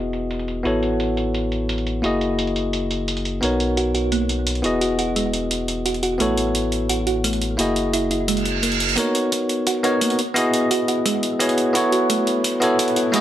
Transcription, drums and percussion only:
0.13 closed hi-hat
0.31 closed hi-hat
0.39 closed hi-hat
0.48 closed hi-hat
0.65 closed hi-hat
0.83 closed hi-hat
1.00 closed hi-hat
1.17 closed hi-hat
1.34 closed hi-hat
1.52 closed hi-hat
1.69 closed hi-hat
1.78 closed hi-hat
1.87 closed hi-hat
2.04 closed hi-hat
2.21 closed hi-hat
2.39 closed hi-hat
2.47 closed hi-hat
2.56 closed hi-hat
2.73 closed hi-hat
2.91 closed hi-hat
3.08 closed hi-hat
3.17 closed hi-hat
3.25 closed hi-hat
3.43 closed hi-hat
3.60 closed hi-hat
3.77 closed hi-hat
3.95 closed hi-hat
4.12 closed hi-hat
4.29 closed hi-hat
4.47 closed hi-hat
4.55 closed hi-hat
4.64 closed hi-hat
4.81 closed hi-hat
4.99 closed hi-hat
5.16 closed hi-hat
5.34 closed hi-hat
5.51 closed hi-hat
5.68 closed hi-hat
5.86 closed hi-hat
5.94 closed hi-hat
6.03 closed hi-hat
6.20 closed hi-hat
6.38 closed hi-hat
6.55 closed hi-hat
6.72 closed hi-hat
6.89 closed hi-hat
7.07 closed hi-hat
7.24 closed hi-hat
7.33 closed hi-hat
7.42 closed hi-hat
7.59 closed hi-hat
7.76 closed hi-hat
7.93 closed hi-hat
8.11 closed hi-hat
8.28 closed hi-hat
8.37 closed hi-hat
8.45 closed hi-hat
8.63 closed hi-hat
8.72 closed hi-hat
8.80 closed hi-hat
8.89 closed hi-hat
8.97 kick, closed hi-hat
9.15 closed hi-hat
9.32 kick, closed hi-hat
9.49 closed hi-hat
9.67 kick, closed hi-hat
9.84 closed hi-hat
10.01 kick, closed hi-hat
10.10 closed hi-hat
10.19 closed hi-hat
10.36 kick, closed hi-hat
10.54 closed hi-hat
10.71 kick, closed hi-hat
10.88 closed hi-hat
11.06 kick, closed hi-hat
11.23 closed hi-hat
11.40 kick, closed hi-hat
11.49 closed hi-hat
11.58 closed hi-hat
11.75 kick, closed hi-hat
11.92 closed hi-hat
12.10 kick, closed hi-hat
12.27 closed hi-hat
12.44 kick, closed hi-hat
12.62 closed hi-hat
12.79 kick, closed hi-hat
12.88 closed hi-hat
12.96 closed hi-hat
13.14 kick, closed hi-hat

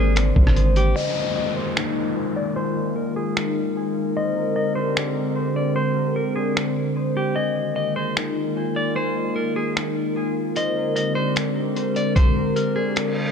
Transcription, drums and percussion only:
0.16 finger snap, closed hi-hat
0.36 kick
0.47 cross-stick
0.56 closed hi-hat
0.76 closed hi-hat
1.77 finger snap
3.37 finger snap
4.97 finger snap
6.57 finger snap
8.17 finger snap
9.77 finger snap
10.56 closed hi-hat
10.96 closed hi-hat
11.36 finger snap, closed hi-hat
11.76 closed hi-hat
11.96 closed hi-hat
12.16 kick, closed hi-hat
12.56 closed hi-hat
12.96 finger snap, closed hi-hat

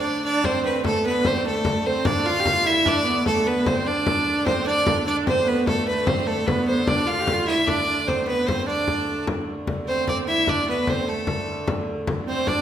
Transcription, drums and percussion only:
0.24 frame drum
0.44 frame drum
0.65 frame drum
0.84 frame drum
1.25 frame drum
1.45 frame drum
1.65 frame drum
1.85 frame drum
2.05 frame drum
2.45 frame drum
2.66 frame drum
2.86 frame drum
3.06 frame drum
3.26 frame drum
3.47 frame drum
3.66 frame drum
4.06 frame drum
4.27 frame drum
4.46 frame drum
4.87 frame drum
5.07 frame drum
5.27 frame drum
5.47 frame drum
5.67 frame drum
6.07 frame drum
6.27 frame drum
6.48 frame drum
6.68 frame drum
6.87 frame drum
7.27 frame drum
7.48 frame drum
7.68 frame drum
7.87 frame drum
8.08 frame drum
8.28 frame drum
8.48 frame drum
8.68 frame drum
8.87 frame drum
9.27 frame drum
9.67 frame drum
9.87 frame drum
10.07 frame drum
10.47 frame drum
10.87 frame drum
11.08 frame drum
11.27 frame drum
11.67 frame drum
12.07 frame drum
12.27 frame drum
12.47 frame drum

